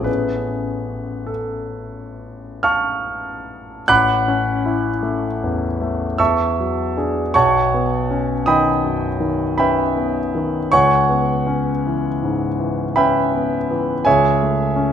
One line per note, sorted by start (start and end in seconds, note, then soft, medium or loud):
0.00 3.82 A1 soft
0.00 0.10 F3 soft
0.00 3.82 A3 soft
0.00 3.83 B3 soft
0.00 3.83 C#4 soft
0.00 0.04 G#4 soft
0.00 3.84 G#4 soft
0.04 1.29 B4 medium
1.26 2.64 A4 soft
2.63 3.85 F5 medium
2.63 3.85 A5 medium
2.63 3.85 C#6 medium
2.63 3.88 F6 medium
3.88 6.15 A1 medium
3.88 6.15 F#5 medium
3.88 6.15 B5 medium
3.88 6.15 D6 medium
3.88 6.19 F#6 loud
4.28 4.89 C#4 soft
4.66 5.27 E4 soft
5.03 5.65 A3 soft
5.44 6.05 E2 soft
5.81 6.20 A3 soft
6.18 7.30 E2 medium
6.18 7.30 E5 medium
6.18 7.30 A5 medium
6.18 7.30 C#6 medium
6.18 7.33 E6 medium
6.60 7.20 F#3 soft
6.97 7.31 D4 soft
6.97 7.31 G#4 soft
7.34 10.69 B1 medium
7.34 8.43 C#5 medium
7.34 8.43 F#5 medium
7.34 8.43 A5 medium
7.34 8.46 C#6 medium
7.74 8.33 B3 soft
8.11 8.69 C#4 soft
8.46 9.06 D#3 soft
8.46 9.55 D#5 medium
8.46 9.55 G5 medium
8.46 9.55 B5 medium
8.46 9.58 D#6 medium
8.84 9.43 F#2 soft
9.20 9.81 D#3 soft
9.58 10.19 C#4 soft
9.58 10.68 B4 medium
9.58 10.68 E5 medium
9.58 10.68 G5 medium
9.58 10.71 B5 medium
9.97 10.57 B3 soft
10.35 10.72 D#3 soft
10.72 14.03 C#2 medium
10.72 12.94 C#5 medium
10.72 12.94 F#5 medium
10.72 12.94 G#5 medium
10.72 12.97 C#6 loud
11.09 11.70 B3 soft
11.47 12.08 C#4 soft
11.87 12.46 E3 soft
12.23 12.82 G#2 soft
12.59 13.19 E3 soft
12.96 13.56 C#4 soft
12.96 14.02 B4 medium
12.96 14.02 E5 medium
12.96 14.02 G5 medium
12.96 14.06 B5 medium
13.34 13.92 B3 soft
13.71 14.06 E3 soft
14.05 14.93 C#2 medium
14.05 14.93 G#4 medium
14.05 14.93 C#5 medium
14.05 14.93 E5 medium
14.05 14.93 G#5 medium
14.43 14.93 A3 soft
14.76 14.93 C#4 soft